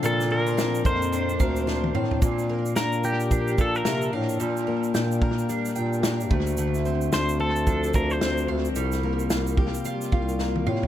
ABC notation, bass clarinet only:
X:1
M:4/4
L:1/8
Q:"Swing 16ths" 1/4=110
K:Bblyd
V:1 name="Bass clarinet" clef=bass
B,,3 F,,2 D,,2 A,, | B,,2 B,,3 B,, C, A,, | B,,2 B,,2 z B,,2 D,,- | D,,2 D,,3 D,, D,, D,, |
C,,2 C,,2 z C,,2 A,, |]